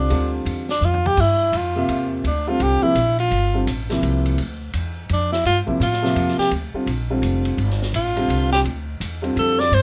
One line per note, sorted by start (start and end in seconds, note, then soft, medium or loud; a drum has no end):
0.00 0.34 D4 medium
0.09 0.45 D2 medium
0.09 0.64 D3 medium
0.09 0.64 G3 medium
0.09 0.64 C4 medium
0.09 0.64 F4 medium
0.09 ride medium
0.45 0.80 E2 medium
0.45 ride medium
0.69 0.86 D4 medium
0.69 snare medium
0.81 1.16 F2 medium
0.81 1.08 F4 medium
0.81 hi-hat pedal medium
0.94 floor tom medium
1.06 1.22 G4 loud
1.06 floor tom medium
1.17 1.52 G2 medium
1.17 1.58 E4 medium
1.17 kick medium
1.17 crash medium
1.52 1.87 F2 medium
1.52 hi-hat pedal medium
1.52 ride medium
1.57 2.13 F4 medium
1.76 2.22 C3 medium
1.76 2.22 A#3 medium
1.76 2.22 F4 medium
1.76 2.22 E5 medium
1.88 2.23 E2 medium
1.88 ride medium
2.24 2.59 D2 medium
2.24 2.50 D4 medium
2.24 ride medium
2.47 2.80 D3 medium
2.47 2.81 G3 medium
2.47 2.81 C4 medium
2.47 2.81 F4 medium
2.47 2.64 F4 medium
2.60 2.81 C2 medium
2.60 2.84 G4 medium
2.60 ride medium
2.82 2.94 C3 medium
2.82 2.94 F3 medium
2.82 2.94 A#3 medium
2.82 3.18 E4 medium
2.82 2.94 E4 medium
2.82 muted upright bass stroke soft
2.95 3.30 A#1 medium
2.95 hi-hat pedal medium
2.95 ride medium
3.19 3.64 F4 medium
3.19 ride soft
3.31 3.66 G1 medium
3.31 ride medium
3.54 3.66 D3 medium
3.54 3.66 G3 medium
3.54 3.66 C4 medium
3.54 3.66 F4 medium
3.67 4.01 A1 medium
3.67 hi-hat pedal medium
3.67 ride medium
3.90 4.35 C3 medium
3.90 4.36 F3 medium
3.90 4.36 A#3 medium
3.90 4.36 E4 medium
3.90 snare soft
3.90 ride soft
4.03 4.37 C2 medium
4.03 ride medium
4.25 ride soft
4.38 4.73 D2 medium
4.38 ride medium
4.73 5.08 E2 medium
4.73 hi-hat pedal medium
4.73 ride medium
5.09 5.44 F2 medium
5.09 5.32 D4 medium
5.09 ride medium
5.32 5.44 E4 medium
5.32 snare soft
5.45 5.66 G2 medium
5.45 5.59 F4 medium
5.45 ride medium
5.66 5.79 C3 medium
5.66 5.79 F3 medium
5.66 5.79 A#3 medium
5.66 5.79 E4 medium
5.66 muted upright bass stroke soft
5.66 kick soft
5.80 6.15 A2 medium
5.80 6.36 F4 medium
5.80 hi-hat pedal medium
5.80 ride medium
5.92 snare soft
6.02 6.49 C3 medium
6.02 6.49 F3 medium
6.02 6.49 A#3 medium
6.02 6.49 E5 medium
6.02 snare soft
6.15 6.37 F2 medium
6.15 ride medium
6.28 snare soft
6.38 6.51 G4 loud
6.38 muted upright bass stroke soft
6.38 snare soft
6.51 6.72 D2 medium
6.51 ride medium
6.74 6.86 D3 medium
6.74 6.86 G3 medium
6.74 6.86 C4 medium
6.74 6.87 F4 medium
6.74 muted upright bass stroke soft
6.86 7.21 A#1 medium
6.86 ride medium
7.10 7.56 D3 medium
7.10 7.56 G3 medium
7.10 7.56 C4 medium
7.10 7.56 F4 medium
7.22 7.57 F1 medium
7.22 hi-hat pedal medium
7.22 ride medium
7.45 ride soft
7.57 7.92 G1 medium
7.57 ride medium
7.70 snare soft
7.82 snare soft
7.93 8.28 A1 medium
7.93 8.49 F4 medium
7.93 hi-hat pedal medium
7.93 ride medium
8.16 8.63 D3 medium
8.16 8.63 G3 medium
8.16 8.63 C4 medium
8.16 8.63 F4 medium
8.16 ride soft
8.28 8.63 C2 medium
8.28 ride medium
8.52 8.60 G4 medium
8.52 snare medium
8.64 8.99 D2 medium
8.64 ride medium
9.00 9.35 E2 medium
9.00 hi-hat pedal medium
9.00 ride medium
9.22 9.69 D3 medium
9.22 9.69 G3 medium
9.22 9.69 C4 medium
9.22 9.69 F4 medium
9.22 ride soft
9.36 9.71 F2 medium
9.36 9.61 A4 medium
9.36 ride medium
9.59 9.76 D5 loud
9.59 snare soft
9.71 9.82 G2 medium
9.71 9.82 C5 medium
9.71 ride medium